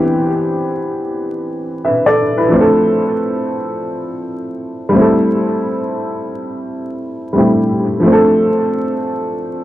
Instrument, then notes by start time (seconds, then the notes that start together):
upright piano
Already playing: E3 B3 C4 D4 G4
1.85 B4 E5
2.06 A4 D5
2.37 E4 B4
2.48 F3 A3
2.54 C4 D4
2.60 A4
4.89 G3 A3
4.95 C4 E4
5.01 A4
7.33 G3 A3 C4
7.37 E4 G4
8.00 F3 A3
8.06 C4 D4
8.12 A4